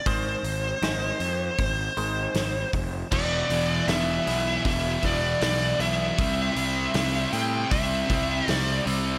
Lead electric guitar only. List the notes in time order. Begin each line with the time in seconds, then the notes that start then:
0.07 C5
3.13 D5
3.88 E5
4.67 E5
5.06 D5
5.44 D5
5.81 E5
7.33 G5
7.71 E5
8.48 D5